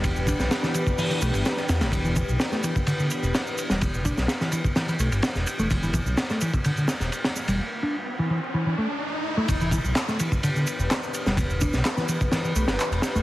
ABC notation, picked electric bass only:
X:1
M:4/4
L:1/16
Q:1/4=127
K:Em
V:1 name="Picked electric bass" clef=bass
z2 D z2 E, E, z E, E, A, z4 A, | z E, E, z2 A, E, z D, D, z4 z G, | z2 D z2 E, E, z E, E, A, z4 A, | z E, E, z2 A, E, z D, D, z4 z G, |
z2 D z2 E, E, z E, E, A, z4 A, | z E, E, z2 A, E, z D, D, z4 z G, | z2 D z2 E, E, z E, E, A, z4 A, |]